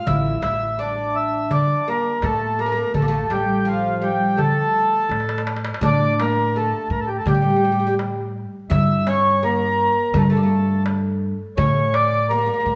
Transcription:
0.07 upright bass A1, oud E4, accordion E5, darbuka dum
0.25 darbuka ka
0.42 upright bass A1, oud E4, accordion E5, darbuka tek
0.79 oud D4, accordion D5
1.16 accordion E5
1.51 oud D4, accordion D5, darbuka dum
1.88 oud A#3, accordion A#4
2.05 darbuka ka
2.22 upright bass A2, oud A3, accordion A4, darbuka tek
2.59 oud A#3, accordion A#4
2.66 oud C#4
2.72 oud A#3
2.77 darbuka ka
2.94 upright bass A1, oud A3, accordion A4, darbuka dum
3.02 oud A#3
3.08 oud A3
3.13 darbuka ka
3.30 upright bass A1, oud G3, accordion G4, darbuka tek
3.65 oud F3, accordion F4, darbuka ka
4.02 oud G3, accordion G4
4.37 oud A3, accordion A4, darbuka dum
4.56 darbuka ka
4.75 darbuka ka
4.93 darbuka ka
5.09 upright bass A2, darbuka tek
5.20 darbuka ka
5.29 darbuka tek
5.38 darbuka ka
5.47 darbuka tek
5.57 darbuka ka
5.65 darbuka tek
5.74 darbuka ka
5.81 upright bass A2, oud D4, darbuka dum
5.85 accordion D5
6.01 darbuka ka
6.20 oud A#3, accordion A#4, darbuka tek
6.55 oud A3, accordion A4, darbuka ka
6.90 upright bass A2, accordion A#4
7.00 accordion A4
7.08 accordion G4, darbuka ka
7.18 accordion A4
7.26 upright bass A2, oud G3, accordion G4, darbuka dum
7.34 oud G3
7.42 oud G3, darbuka ka
7.50 oud G3
7.56 oud G3
7.63 oud G3, darbuka ka
7.72 oud G3
7.80 oud G3
7.87 oud G3
7.99 darbuka tek
8.70 upright bass G2, oud E4, accordion E5, darbuka dum
8.90 darbuka ka
9.07 oud C#4, accordion C#5, darbuka tek
9.42 oud A#3, accordion A#4, darbuka ka
9.97 darbuka ka
10.14 upright bass G2, oud A3, accordion A4, darbuka dum
10.21 accordion A#4
10.30 oud A3, accordion A4, darbuka ka
10.37 oud A#3
10.43 oud A3
10.50 darbuka ka
10.86 darbuka tek
11.57 upright bass A2, oud C#4, accordion C#5, darbuka dum
11.77 darbuka ka
11.94 accordion D5, darbuka tek
12.30 oud A#3, accordion A#4, darbuka ka
12.38 oud A#3
12.46 oud A#3
12.54 oud A#3
12.60 oud A#3
12.66 upright bass A2, oud A#3

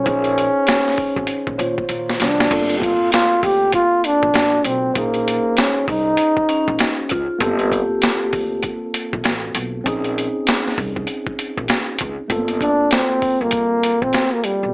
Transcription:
Already playing: trombone C#4
0.04 upright bass A#1, tine electric piano C#4 D#4 C5, kick, closed hi-hat
0.08 tine electric piano G#4
0.24 closed hi-hat
0.38 closed hi-hat
0.67 snare, closed hi-hat
0.88 snare
0.98 kick, open hi-hat
1.16 upright bass G#1, kick
1.27 closed hi-hat
1.47 upright bass A#1, kick
1.58 upright bass A#2, tine electric piano D#3 F4 C5 C#5, closed hi-hat
1.78 kick
1.89 upright bass A#2, closed hi-hat
2.10 snare
2.20 upright bass C2, trombone D4, snare, closed hi-hat
2.40 snare
2.49 upright bass G1, tine electric piano A#3 C4 F4, kick, closed hi-hat, crash
2.53 tine electric piano A4
2.69 closed hi-hat
2.77 trombone G4
2.82 trombone F4, kick, closed hi-hat
3.12 trombone F4, snare, closed hi-hat
3.43 upright bass D2, trombone G4, kick, open hi-hat
3.72 trombone F4, kick, closed hi-hat
4.04 trombone D4, closed hi-hat
4.23 upright bass A#1, kick
4.34 upright bass A1, snare, closed hi-hat
4.64 upright bass B1, trombone C4, closed hi-hat
4.94 upright bass A#1, trombone A#3, tine electric piano C#4 D#4 C5, kick, closed hi-hat
4.98 tine electric piano G#4
5.14 closed hi-hat
5.28 closed hi-hat
5.57 trombone C#4, snare, closed hi-hat
5.88 upright bass C2, trombone D#4, kick, open hi-hat
6.17 closed hi-hat
6.37 kick
6.49 vibraphone C#4, closed hi-hat
6.68 upright bass A#1, kick
6.79 snare, closed hi-hat
7.09 upright bass C#2, vibraphone F4, kick, closed hi-hat
7.39 upright bass G1, tine electric piano A#3 C4 F4, vibraphone G4, kick, closed hi-hat
7.43 tine electric piano A4
7.59 closed hi-hat
7.72 kick, closed hi-hat
8.02 snare, closed hi-hat
8.33 upright bass D2, kick, open hi-hat
8.63 kick, closed hi-hat
8.94 closed hi-hat
9.13 upright bass A#1, kick
9.24 upright bass A1, snare, closed hi-hat
9.55 upright bass B1, closed hi-hat
9.84 upright bass A#1, tine electric piano C4 C#4 D#4, kick, closed hi-hat
9.88 tine electric piano G#4
10.04 closed hi-hat
10.18 closed hi-hat
10.47 snare, closed hi-hat
10.67 snare
10.78 upright bass C2, kick, open hi-hat
10.96 kick
11.07 closed hi-hat
11.27 kick
11.39 closed hi-hat
11.57 upright bass A#1, kick
11.68 snare, closed hi-hat
11.99 upright bass C#2, kick, closed hi-hat
12.28 upright bass G1, tine electric piano A3 C4 F4, kick, closed hi-hat
12.32 tine electric piano A#3 A4
12.48 closed hi-hat
12.61 trombone D4, kick, closed hi-hat
12.91 trombone C4, snare, closed hi-hat
13.22 kick, open hi-hat
13.41 upright bass G1, trombone A#3
13.51 kick, closed hi-hat
13.83 closed hi-hat
14.02 upright bass A#1, trombone C4, kick
14.13 snare, closed hi-hat
14.33 trombone A#3
14.44 trombone G3, closed hi-hat
14.63 upright bass B1

